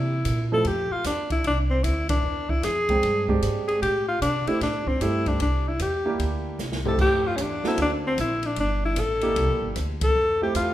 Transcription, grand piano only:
0, 0, Header, 1, 2, 480
1, 0, Start_track
1, 0, Key_signature, -1, "major"
1, 0, Tempo, 395778
1, 787, Time_signature, 4, 2, 24, 8
1, 13023, End_track
2, 0, Start_track
2, 0, Title_t, "Grand piano"
2, 0, Program_c, 0, 0
2, 630, Note_on_c, 0, 53, 61
2, 635, Note_on_c, 0, 57, 52
2, 636, Note_on_c, 0, 60, 51
2, 639, Note_on_c, 0, 64, 59
2, 641, Note_on_c, 0, 69, 63
2, 777, Note_off_c, 0, 53, 0
2, 780, Note_off_c, 0, 57, 0
2, 780, Note_off_c, 0, 60, 0
2, 782, Note_off_c, 0, 64, 0
2, 782, Note_off_c, 0, 69, 0
2, 3509, Note_on_c, 0, 56, 53
2, 3510, Note_on_c, 0, 62, 44
2, 3511, Note_on_c, 0, 60, 47
2, 3515, Note_on_c, 0, 79, 58
2, 3955, Note_off_c, 0, 56, 0
2, 3955, Note_off_c, 0, 62, 0
2, 3956, Note_off_c, 0, 60, 0
2, 3958, Note_off_c, 0, 79, 0
2, 3988, Note_on_c, 0, 62, 60
2, 3990, Note_on_c, 0, 56, 72
2, 3990, Note_on_c, 0, 60, 60
2, 3995, Note_on_c, 0, 67, 74
2, 4602, Note_off_c, 0, 62, 0
2, 4603, Note_off_c, 0, 56, 0
2, 4603, Note_off_c, 0, 60, 0
2, 4606, Note_off_c, 0, 67, 0
2, 5426, Note_on_c, 0, 57, 52
2, 5428, Note_on_c, 0, 60, 51
2, 5430, Note_on_c, 0, 67, 62
2, 5431, Note_on_c, 0, 64, 54
2, 5578, Note_off_c, 0, 57, 0
2, 5579, Note_off_c, 0, 60, 0
2, 5580, Note_off_c, 0, 67, 0
2, 5581, Note_off_c, 0, 64, 0
2, 6079, Note_on_c, 0, 57, 58
2, 6081, Note_on_c, 0, 60, 50
2, 6083, Note_on_c, 0, 64, 55
2, 6085, Note_on_c, 0, 67, 64
2, 6557, Note_off_c, 0, 57, 0
2, 6558, Note_off_c, 0, 60, 0
2, 6559, Note_off_c, 0, 64, 0
2, 6560, Note_off_c, 0, 67, 0
2, 7346, Note_on_c, 0, 58, 57
2, 7346, Note_on_c, 0, 62, 50
2, 7347, Note_on_c, 0, 64, 55
2, 7350, Note_on_c, 0, 67, 65
2, 7962, Note_off_c, 0, 58, 0
2, 7962, Note_off_c, 0, 62, 0
2, 7963, Note_off_c, 0, 64, 0
2, 7964, Note_off_c, 0, 67, 0
2, 8315, Note_on_c, 0, 57, 59
2, 8316, Note_on_c, 0, 60, 51
2, 8317, Note_on_c, 0, 64, 52
2, 8319, Note_on_c, 0, 67, 65
2, 8926, Note_off_c, 0, 57, 0
2, 8927, Note_off_c, 0, 60, 0
2, 8927, Note_off_c, 0, 64, 0
2, 8928, Note_off_c, 0, 67, 0
2, 9270, Note_on_c, 0, 58, 59
2, 9272, Note_on_c, 0, 66, 57
2, 9273, Note_on_c, 0, 60, 58
2, 9277, Note_on_c, 0, 69, 66
2, 9883, Note_off_c, 0, 58, 0
2, 9884, Note_off_c, 0, 66, 0
2, 9885, Note_off_c, 0, 60, 0
2, 9887, Note_off_c, 0, 69, 0
2, 11189, Note_on_c, 0, 58, 55
2, 11191, Note_on_c, 0, 62, 58
2, 11192, Note_on_c, 0, 64, 50
2, 11193, Note_on_c, 0, 67, 66
2, 11802, Note_off_c, 0, 58, 0
2, 11802, Note_off_c, 0, 62, 0
2, 11803, Note_off_c, 0, 64, 0
2, 11804, Note_off_c, 0, 67, 0
2, 12635, Note_on_c, 0, 57, 57
2, 12635, Note_on_c, 0, 60, 54
2, 12638, Note_on_c, 0, 64, 54
2, 12638, Note_on_c, 0, 67, 63
2, 13023, Note_off_c, 0, 57, 0
2, 13023, Note_off_c, 0, 60, 0
2, 13023, Note_off_c, 0, 64, 0
2, 13023, Note_off_c, 0, 67, 0
2, 13023, End_track
0, 0, End_of_file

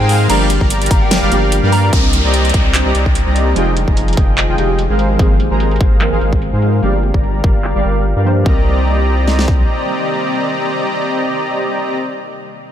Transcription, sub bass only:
0, 0, Header, 1, 2, 480
1, 0, Start_track
1, 0, Key_signature, -3, "minor"
1, 0, Tempo, 408163
1, 348, Time_signature, 4, 2, 24, 8
1, 14956, End_track
2, 0, Start_track
2, 0, Title_t, "Sub bass"
2, 0, Program_c, 0, 38
2, 0, Note_on_c, 0, 44, 100
2, 326, Note_off_c, 0, 44, 0
2, 348, Note_on_c, 0, 31, 96
2, 693, Note_off_c, 0, 31, 0
2, 719, Note_on_c, 0, 31, 103
2, 1046, Note_off_c, 0, 31, 0
2, 1068, Note_on_c, 0, 31, 97
2, 1413, Note_off_c, 0, 31, 0
2, 1440, Note_on_c, 0, 31, 101
2, 1526, Note_off_c, 0, 31, 0
2, 1548, Note_on_c, 0, 31, 93
2, 1893, Note_off_c, 0, 31, 0
2, 1920, Note_on_c, 0, 43, 106
2, 2246, Note_off_c, 0, 43, 0
2, 2268, Note_on_c, 0, 36, 90
2, 2613, Note_off_c, 0, 36, 0
2, 2639, Note_on_c, 0, 36, 93
2, 2966, Note_off_c, 0, 36, 0
2, 2988, Note_on_c, 0, 36, 92
2, 3333, Note_off_c, 0, 36, 0
2, 3359, Note_on_c, 0, 36, 91
2, 3446, Note_off_c, 0, 36, 0
2, 3468, Note_on_c, 0, 36, 92
2, 3813, Note_off_c, 0, 36, 0
2, 3839, Note_on_c, 0, 36, 99
2, 4166, Note_off_c, 0, 36, 0
2, 4188, Note_on_c, 0, 29, 95
2, 4533, Note_off_c, 0, 29, 0
2, 4559, Note_on_c, 0, 29, 91
2, 4886, Note_off_c, 0, 29, 0
2, 4908, Note_on_c, 0, 29, 97
2, 5253, Note_off_c, 0, 29, 0
2, 5280, Note_on_c, 0, 29, 93
2, 5366, Note_off_c, 0, 29, 0
2, 5388, Note_on_c, 0, 29, 92
2, 5733, Note_off_c, 0, 29, 0
2, 5760, Note_on_c, 0, 32, 97
2, 6086, Note_off_c, 0, 32, 0
2, 6108, Note_on_c, 0, 32, 93
2, 6453, Note_off_c, 0, 32, 0
2, 6480, Note_on_c, 0, 32, 94
2, 6806, Note_off_c, 0, 32, 0
2, 6828, Note_on_c, 0, 32, 95
2, 7173, Note_off_c, 0, 32, 0
2, 7200, Note_on_c, 0, 32, 86
2, 7286, Note_off_c, 0, 32, 0
2, 7308, Note_on_c, 0, 32, 94
2, 7653, Note_off_c, 0, 32, 0
2, 7679, Note_on_c, 0, 44, 95
2, 8006, Note_off_c, 0, 44, 0
2, 8028, Note_on_c, 0, 31, 93
2, 8373, Note_off_c, 0, 31, 0
2, 8400, Note_on_c, 0, 31, 92
2, 8726, Note_off_c, 0, 31, 0
2, 8749, Note_on_c, 0, 31, 88
2, 9093, Note_off_c, 0, 31, 0
2, 9120, Note_on_c, 0, 31, 90
2, 9206, Note_off_c, 0, 31, 0
2, 9229, Note_on_c, 0, 31, 89
2, 9574, Note_off_c, 0, 31, 0
2, 9600, Note_on_c, 0, 43, 94
2, 9927, Note_off_c, 0, 43, 0
2, 9948, Note_on_c, 0, 36, 87
2, 11341, Note_off_c, 0, 36, 0
2, 14956, End_track
0, 0, End_of_file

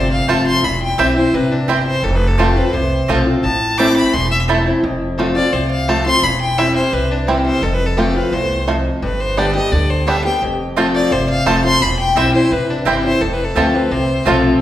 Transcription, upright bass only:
0, 0, Header, 1, 2, 480
1, 0, Start_track
1, 0, Tempo, 349447
1, 872, Time_signature, 4, 2, 24, 8
1, 20075, End_track
2, 0, Start_track
2, 0, Title_t, "Upright bass"
2, 0, Program_c, 0, 32
2, 0, Note_on_c, 0, 31, 90
2, 313, Note_off_c, 0, 31, 0
2, 385, Note_on_c, 0, 29, 82
2, 797, Note_off_c, 0, 29, 0
2, 872, Note_on_c, 0, 28, 95
2, 1256, Note_off_c, 0, 28, 0
2, 1351, Note_on_c, 0, 35, 84
2, 1762, Note_off_c, 0, 35, 0
2, 1833, Note_on_c, 0, 33, 84
2, 2243, Note_off_c, 0, 33, 0
2, 2311, Note_on_c, 0, 31, 73
2, 2723, Note_off_c, 0, 31, 0
2, 2788, Note_on_c, 0, 29, 98
2, 3559, Note_off_c, 0, 29, 0
2, 3749, Note_on_c, 0, 36, 88
2, 4163, Note_off_c, 0, 36, 0
2, 4237, Note_on_c, 0, 35, 77
2, 4647, Note_off_c, 0, 35, 0
2, 4720, Note_on_c, 0, 33, 96
2, 5486, Note_off_c, 0, 33, 0
2, 5684, Note_on_c, 0, 28, 94
2, 6448, Note_off_c, 0, 28, 0
2, 6640, Note_on_c, 0, 29, 95
2, 7406, Note_off_c, 0, 29, 0
2, 7595, Note_on_c, 0, 36, 91
2, 8362, Note_off_c, 0, 36, 0
2, 8551, Note_on_c, 0, 28, 93
2, 9319, Note_off_c, 0, 28, 0
2, 9514, Note_on_c, 0, 36, 92
2, 10280, Note_off_c, 0, 36, 0
2, 10467, Note_on_c, 0, 29, 105
2, 11235, Note_off_c, 0, 29, 0
2, 11425, Note_on_c, 0, 36, 85
2, 12193, Note_off_c, 0, 36, 0
2, 12393, Note_on_c, 0, 31, 94
2, 13157, Note_off_c, 0, 31, 0
2, 13350, Note_on_c, 0, 38, 94
2, 14115, Note_off_c, 0, 38, 0
2, 14314, Note_on_c, 0, 29, 96
2, 15077, Note_off_c, 0, 29, 0
2, 15268, Note_on_c, 0, 31, 90
2, 15677, Note_off_c, 0, 31, 0
2, 15740, Note_on_c, 0, 29, 75
2, 16152, Note_off_c, 0, 29, 0
2, 16224, Note_on_c, 0, 28, 98
2, 16608, Note_off_c, 0, 28, 0
2, 16697, Note_on_c, 0, 35, 91
2, 17110, Note_off_c, 0, 35, 0
2, 17181, Note_on_c, 0, 33, 92
2, 17592, Note_off_c, 0, 33, 0
2, 17659, Note_on_c, 0, 31, 77
2, 18071, Note_off_c, 0, 31, 0
2, 18144, Note_on_c, 0, 29, 100
2, 18528, Note_off_c, 0, 29, 0
2, 18621, Note_on_c, 0, 38, 93
2, 19033, Note_off_c, 0, 38, 0
2, 19103, Note_on_c, 0, 36, 84
2, 19514, Note_off_c, 0, 36, 0
2, 19587, Note_on_c, 0, 35, 86
2, 19996, Note_off_c, 0, 35, 0
2, 20075, End_track
0, 0, End_of_file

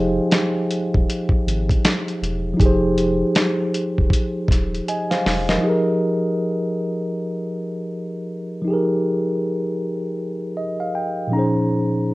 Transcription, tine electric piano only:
0, 0, Header, 1, 2, 480
1, 0, Start_track
1, 0, Key_signature, -4, "minor"
1, 0, Tempo, 759494
1, 1640, Time_signature, 4, 2, 24, 8
1, 7672, End_track
2, 0, Start_track
2, 0, Title_t, "Tine electric piano"
2, 0, Program_c, 0, 4
2, 0, Control_c, 0, 64, 127
2, 0, Note_on_c, 0, 53, 78
2, 0, Note_on_c, 0, 63, 76
2, 0, Note_on_c, 0, 67, 66
2, 0, Note_on_c, 0, 68, 70
2, 0, Note_on_c, 0, 72, 82
2, 0, Note_on_c, 0, 75, 73
2, 0, Note_on_c, 0, 77, 75
2, 0, Note_on_c, 0, 79, 67
2, 0, Note_on_c, 0, 80, 76
2, 1596, Note_off_c, 0, 53, 0
2, 1604, Note_on_c, 0, 53, 81
2, 1607, Note_off_c, 0, 63, 0
2, 1616, Note_off_c, 0, 67, 0
2, 1625, Note_off_c, 0, 68, 0
2, 1625, Note_on_c, 0, 63, 69
2, 1635, Note_off_c, 0, 72, 0
2, 1642, Note_on_c, 0, 67, 75
2, 1660, Note_on_c, 0, 68, 77
2, 1680, Note_on_c, 0, 72, 85
2, 3075, Note_off_c, 0, 72, 0
2, 3088, Note_off_c, 0, 80, 0
2, 3088, Note_on_c, 0, 80, 63
2, 3091, Note_off_c, 0, 75, 0
2, 3091, Note_on_c, 0, 75, 52
2, 3221, Note_off_c, 0, 80, 0
2, 3223, Note_off_c, 0, 75, 0
2, 3228, Note_off_c, 0, 77, 0
2, 3228, Note_on_c, 0, 77, 76
2, 3232, Note_on_c, 0, 72, 60
2, 3454, Note_off_c, 0, 77, 0
2, 3457, Note_off_c, 0, 72, 0
2, 3469, Note_on_c, 0, 75, 69
2, 3474, Note_on_c, 0, 70, 51
2, 3517, Note_off_c, 0, 53, 0
2, 3524, Note_on_c, 0, 53, 72
2, 3527, Note_off_c, 0, 63, 0
2, 3536, Note_off_c, 0, 67, 0
2, 3544, Note_on_c, 0, 63, 58
2, 3545, Note_off_c, 0, 68, 0
2, 3561, Note_on_c, 0, 67, 62
2, 3569, Control_c, 0, 64, 0
2, 3570, Note_off_c, 0, 79, 0
2, 3581, Note_on_c, 0, 68, 68
2, 3591, Note_off_c, 0, 70, 0
2, 3599, Note_on_c, 0, 70, 78
2, 3695, Note_off_c, 0, 75, 0
2, 3696, Control_c, 0, 64, 127
2, 5437, Note_off_c, 0, 53, 0
2, 5446, Note_on_c, 0, 53, 73
2, 5447, Note_off_c, 0, 63, 0
2, 5455, Note_off_c, 0, 67, 0
2, 5464, Note_on_c, 0, 63, 61
2, 5465, Note_off_c, 0, 68, 0
2, 5474, Note_off_c, 0, 70, 0
2, 5483, Note_on_c, 0, 67, 67
2, 5500, Note_on_c, 0, 68, 63
2, 5519, Note_on_c, 0, 70, 72
2, 6680, Note_on_c, 0, 75, 65
2, 6814, Note_off_c, 0, 75, 0
2, 6827, Note_on_c, 0, 77, 63
2, 6914, Note_off_c, 0, 77, 0
2, 6921, Note_on_c, 0, 79, 65
2, 7118, Note_off_c, 0, 53, 0
2, 7125, Note_on_c, 0, 46, 57
2, 7127, Note_off_c, 0, 63, 0
2, 7136, Note_off_c, 0, 67, 0
2, 7141, Note_on_c, 0, 53, 58
2, 7144, Note_off_c, 0, 79, 0
2, 7145, Note_off_c, 0, 68, 0
2, 7154, Note_off_c, 0, 70, 0
2, 7155, Note_on_c, 0, 61, 63
2, 7163, Note_on_c, 0, 82, 62
2, 7167, Control_c, 0, 64, 0
2, 7170, Note_on_c, 0, 63, 59
2, 7185, Note_on_c, 0, 68, 59
2, 7198, Note_on_c, 0, 72, 65
2, 7275, Control_c, 0, 64, 127
2, 7385, Note_off_c, 0, 82, 0
2, 7672, Note_off_c, 0, 46, 0
2, 7672, Note_off_c, 0, 53, 0
2, 7672, Note_off_c, 0, 61, 0
2, 7672, Note_off_c, 0, 63, 0
2, 7672, Note_off_c, 0, 68, 0
2, 7672, Note_off_c, 0, 72, 0
2, 7672, End_track
0, 0, End_of_file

